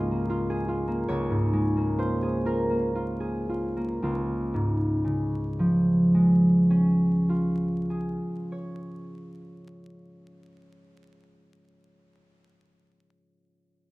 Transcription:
Already playing: C#2 G#2 G#3 A#3 F4 G#4 A#4 C#5 D#5 F5
0.11 A#3
0.30 F4
0.50 G#4
0.68 F4
0.88 A#3
1.08 C#2 C#5
1.30 G#2
1.53 G#3
1.77 A#3
1.98 F4 C5
2.23 G#4
2.45 F4 A#4
2.70 A#3
2.95 F4
3.20 G#4
3.49 F4
3.77 A#3
4.02 C#2 F4
4.54 G#2
5.05 C#3
5.59 F3
6.14 G#3
6.70 C#4
7.29 F4
7.90 G#4
8.52 C#5

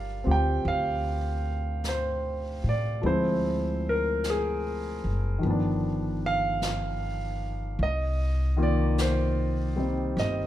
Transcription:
Already playing: G1 G3 D4 F4 A#4 D5 F5
0.24 D2 C4 F4 G4
0.31 G5
0.64 D2, brush sweep
0.68 F5
1.84 brush sweep, snare, hi-hat pedal
1.89 C5
2.64 A2
2.69 D5
3.02 D2 F3 G#3 C4, brush sweep
3.06 E4 C5
3.89 A#4
4.24 brush sweep, snare, hi-hat pedal
4.30 G#4
5.04 F#1
5.39 D#3 F3, brush sweep
5.43 G1 B3
5.50 D4
6.26 F5
6.62 brush sweep, snare, hi-hat pedal
7.79 C2 D#5, brush sweep
8.57 D#3 A#3 F4
8.63 D5
8.98 C5, brush sweep, snare, hi-hat pedal
9.76 G3 C4 D#4
10.17 G1 D#5, brush sweep, snare

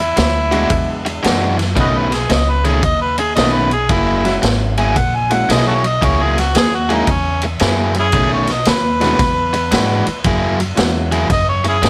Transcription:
Already playing: E2 E4
0.00 muted overdriven electric guitar stroke
0.17 D2, muted overdriven electric guitar stroke, snare, ride
0.51 E3 G#3 B3 D4 E4 F#4, ride
0.70 E2, muted overdriven electric guitar stroke, kick, ride
1.05 muted overdriven electric guitar stroke, ride
1.23 F#2 E3 G#3 D4 F#4, snare, ride
1.58 muted overdriven electric guitar stroke, snare, ride
1.76 B1 B2 D#3 A3 C#4, kick, ride
1.80 F#4 B4 D#5
1.98 B4
2.11 G#4, muted overdriven electric guitar stroke, snare, ride
2.30 C#2 D#5, muted overdriven electric guitar stroke, snare, ride
2.50 B4
2.65 B2 D#3 A3 C#4 G#4, ride
2.83 D#2 D#5, muted overdriven electric guitar stroke, kick, ride
3.01 B4
3.18 G#4, muted overdriven electric guitar stroke, ride
3.35 B1 B2 D#3 A3 B3 C#4 D#4 F#4 D#5, snare, ride
3.52 B4
3.71 G#4, muted overdriven electric guitar stroke, ride
3.89 F#1 F#3 A#3 E4 G#4, kick, ride
4.24 G#3 A#3 C#4 E4 F#4, muted overdriven electric guitar stroke, snare, ride
4.42 G#1, muted overdriven electric guitar stroke, snare, ride
4.78 F#3 A#3 E4 G#4 G#5, ride
4.96 A#1 F#5, muted overdriven electric guitar stroke, kick, ride
5.15 G#5
5.30 G#3 A#3 C#4 E4 F#4 F#5, muted overdriven electric guitar stroke, ride
5.48 B1 F#3 A#3 E4 G#4 D#5, snare, ride
5.68 F#4 A4 C#5
5.84 D#5, muted overdriven electric guitar stroke, ride
6.02 C#2 F#3 A#3 E4 G#4 C#5, kick, ride
6.23 G#4
6.38 F#4, muted overdriven electric guitar stroke, snare, ride
6.55 D#2 G#4, muted overdriven electric guitar stroke, snare, ride
6.75 F#4
6.89 F#3 G#3 A#3 C#4 E4 F#4 G#4, ride
6.94 D#4
7.07 E2, muted overdriven electric guitar stroke, kick, ride
7.12 C#4
7.42 muted overdriven electric guitar stroke, ride
7.59 F#2 F#3 A#3 E4 G#4, snare, ride
7.94 muted overdriven electric guitar stroke, ride
8.00 C#4 E4 G#4
8.12 B1 B2 D#3 A3 C#4, kick, ride
8.33 C#5
8.47 muted overdriven electric guitar stroke, snare, ride
8.52 D#5
8.65 D#2 B4, muted overdriven electric guitar stroke, snare, ride
9.00 B2 D#3 G#3 A3 B3 C#4 D4 E4 F#4, snare, ride
9.19 E2, muted overdriven electric guitar stroke, kick, snare, ride
9.53 muted overdriven electric guitar stroke, ride
9.71 G#2 E3 G#3 D4 F#4, snare, ride
10.07 muted upright bass stroke, muted overdriven electric guitar stroke, ride
10.24 F#2 F#3 A#3 E4 G#4, kick, ride
10.60 muted overdriven electric guitar stroke, ride
10.75 E2 G#3 A#3 C#4 E4 F#4, muted overdriven electric guitar stroke, snare, ride
11.12 F#3 A#3 E4 G#4, ride
11.29 F#2 D#5, muted overdriven electric guitar stroke, kick, snare, ride
11.49 C#5
11.64 muted overdriven electric guitar stroke, ride
11.69 C#4 E4 G#4
11.83 G#2 F#3 A#3 E4 G#4, snare, ride

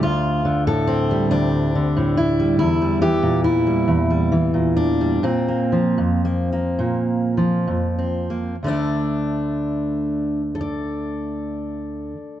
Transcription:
Already playing: D3 A3
0.03 D2 F4
0.45 D3
0.67 A2 A4
0.87 C4
1.11 G3
1.31 D2 D4
1.75 D3
1.97 A2
2.17 E4
2.40 G3
2.59 E2 E4
2.82 G3
3.01 E3 G4
3.23 A#2
3.44 E4
3.67 G3
3.88 E2
4.10 G3
4.32 E3
4.54 A#2
4.77 D4
5.01 G3
5.23 A#2 C4
5.48 A#3
5.72 F3
5.98 F2
6.25 A#3
6.53 A#3
6.79 A#2
7.37 F3
7.67 F2
7.99 C4
8.30 A#3
8.63 D2 D3 A3
8.68 D4
10.55 A4
10.61 D5

